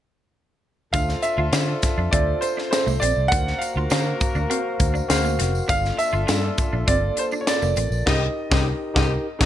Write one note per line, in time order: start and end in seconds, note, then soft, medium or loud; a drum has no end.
0.92 1.14 D2 medium
0.92 2.97 D4 medium
0.92 1.03 D4 medium
0.92 2.97 F4 medium
0.92 1.30 F4 medium
0.92 2.97 A4 medium
0.92 1.30 A4 medium
0.92 1.31 C5 medium
0.92 1.31 E5 medium
0.92 1.24 F5 medium
0.92 kick loud
0.92 closed hi-hat medium
0.92 tambourine soft
1.09 snare soft
1.09 tambourine soft
1.22 2.15 E5 medium
1.22 muted clean electric guitar stroke soft
1.22 closed hi-hat medium
1.22 tambourine soft
1.38 1.48 D2 medium
1.38 1.47 F4 medium
1.52 1.73 D3 loud
1.52 1.62 F4 medium
1.52 1.89 F4 medium
1.52 1.89 A4 medium
1.52 1.90 C5 medium
1.52 1.90 E5 medium
1.52 snare loud
1.52 closed hi-hat medium
1.52 tambourine medium
1.68 muted clean electric guitar stroke soft
1.82 kick medium
1.82 snare soft
1.82 closed hi-hat medium
1.82 tambourine soft
1.98 2.08 F2 medium
1.98 2.07 D4 medium
2.11 2.33 D2 medium
2.11 2.22 C4 medium
2.11 2.49 F4 medium
2.11 2.49 A4 medium
2.11 2.49 C5 medium
2.11 2.39 D5 medium
2.11 2.50 E5 medium
2.11 kick medium
2.11 closed hi-hat medium
2.41 2.69 C5 medium
2.41 muted clean electric guitar stroke soft
2.41 closed hi-hat medium
2.41 tambourine soft
2.57 2.66 D4 medium
2.57 snare soft
2.71 3.08 F4 medium
2.71 3.09 A4 medium
2.71 3.02 C5 medium
2.71 3.09 C5 medium
2.71 3.09 E5 medium
2.71 muted clean electric guitar stroke soft
2.71 snare loud
2.71 closed hi-hat medium
2.71 tambourine medium
2.86 2.97 C2 medium
2.86 2.96 A3 medium
2.86 tambourine soft
3.00 3.12 A#1 medium
3.00 3.11 C4 medium
3.00 3.31 D5 medium
3.00 closed hi-hat medium
3.00 tambourine soft
3.17 3.27 C2 medium
3.28 3.52 D2 medium
3.28 3.41 D4 medium
3.28 3.67 F#4 medium
3.28 5.36 F#4 medium
3.28 3.67 A#4 medium
3.28 3.68 C5 medium
3.28 3.68 F5 medium
3.28 3.60 F#5 loud
3.28 kick loud
3.28 closed hi-hat medium
3.28 tambourine soft
3.32 5.36 A#3 medium
3.32 5.36 A#4 medium
3.47 snare soft
3.58 5.34 F5 medium
3.58 muted clean electric guitar stroke soft
3.58 closed hi-hat medium
3.58 tambourine soft
3.76 3.86 D2 loud
3.76 3.86 F4 medium
3.90 4.11 D3 loud
3.90 4.00 F4 medium
3.90 4.27 F#4 medium
3.90 4.27 A#4 medium
3.90 4.27 C5 medium
3.90 4.28 F5 medium
3.90 snare loud
3.90 closed hi-hat medium
3.90 tambourine medium
4.06 muted clean electric guitar stroke soft
4.20 kick medium
4.20 closed hi-hat medium
4.20 tambourine soft
4.35 4.45 D2 medium
4.35 4.44 D4 medium
4.35 tambourine soft
4.49 4.59 C4 medium
4.49 4.86 F#4 medium
4.49 4.86 A#4 medium
4.49 4.87 C5 medium
4.49 4.87 F5 medium
4.49 closed hi-hat medium
4.80 5.00 D2 medium
4.80 muted clean electric guitar stroke soft
4.80 kick medium
4.80 closed hi-hat medium
4.80 tambourine soft
4.94 5.03 D4 medium
4.94 tambourine soft
5.08 5.41 D2 medium
5.08 5.45 F#4 loud
5.08 5.46 A#4 medium
5.08 5.46 C5 medium
5.08 5.47 F5 loud
5.08 muted clean electric guitar stroke soft
5.08 snare loud
5.08 closed hi-hat medium
5.08 tambourine medium
5.24 5.33 A#3 medium
5.24 tambourine medium
5.39 5.60 F1 medium
5.39 5.48 C4 medium
5.39 5.67 F#5 medium
5.39 snare soft
5.39 closed hi-hat medium
5.39 tambourine soft
5.55 tambourine soft
5.68 5.90 G1 loud
5.68 6.05 A#3 medium
5.68 5.77 D4 medium
5.68 7.73 D4 medium
5.68 6.05 F4 medium
5.68 7.74 F4 medium
5.68 7.73 A4 medium
5.68 6.05 D5 medium
5.68 5.97 F5 loud
5.68 kick loud
5.68 closed hi-hat medium
5.68 tambourine soft
5.85 snare soft
5.85 tambourine soft
5.97 6.90 E5 loud
5.97 muted clean electric guitar stroke soft
5.97 closed hi-hat medium
5.97 tambourine soft
6.13 6.23 G1 medium
6.13 6.22 F4 medium
6.27 6.49 G2 medium
6.27 6.65 A#3 medium
6.27 6.37 F4 medium
6.27 6.65 F4 medium
6.27 6.65 A4 medium
6.27 6.65 D5 medium
6.27 snare loud
6.27 closed hi-hat medium
6.27 tambourine medium
6.42 muted clean electric guitar stroke soft
6.58 kick medium
6.58 closed hi-hat medium
6.58 tambourine soft
6.73 6.83 A#1 medium
6.73 6.82 D4 medium
6.87 7.08 G1 medium
6.87 7.24 A#3 medium
6.87 6.97 C4 medium
6.87 7.24 F4 medium
6.87 7.24 A4 medium
6.87 7.15 D5 medium
6.87 7.25 D5 medium
6.87 kick loud
6.87 closed hi-hat medium
7.17 7.24 C5 medium
7.17 muted clean electric guitar stroke soft
7.17 closed hi-hat medium
7.17 tambourine soft
7.31 7.42 D4 medium
7.31 tambourine soft
7.41 7.48 C#5 medium
7.47 7.84 F4 medium
7.47 7.84 A4 medium
7.47 7.84 A#4 medium
7.47 8.09 D5 medium
7.47 7.84 D5 medium
7.47 muted clean electric guitar stroke soft
7.47 snare loud
7.47 closed hi-hat medium
7.47 tambourine medium
7.62 7.72 F1 medium
7.62 7.71 A#3 medium
7.62 tambourine medium
7.76 7.87 A1 medium
7.76 7.86 C4 medium
7.76 closed hi-hat medium
7.76 tambourine soft
7.91 8.06 A#1 medium
7.91 tambourine soft
8.06 8.27 C2 medium
8.06 8.23 C4 medium
8.06 8.26 D#4 medium
8.06 8.22 D#4 loud
8.06 8.27 G4 medium
8.06 8.22 G4 medium
8.06 8.27 A#4 medium
8.06 9.46 D#5 medium
8.06 kick medium
8.06 snare loud
8.06 crash medium
8.50 8.71 C2 loud
8.50 8.66 C4 medium
8.50 8.71 D#4 medium
8.50 8.67 D#4 medium
8.50 8.71 G4 medium
8.50 8.67 G4 medium
8.50 8.72 A#4 medium
8.50 kick loud
8.50 snare loud
8.94 9.16 C2 medium
8.94 9.12 C4 medium
8.94 9.15 D#4 loud
8.94 9.12 D#4 loud
8.94 9.15 G4 medium
8.94 9.12 G4 loud
8.94 9.16 A#4 medium
8.94 kick loud
8.94 snare loud
9.39 9.46 B1 medium
9.39 9.46 C#4 loud
9.39 9.46 D#4 loud
9.39 9.46 F#4 loud
9.39 9.46 G#4 medium
9.39 9.46 A4 loud
9.39 9.46 C#5 loud
9.39 kick medium
9.39 snare medium
9.39 crash medium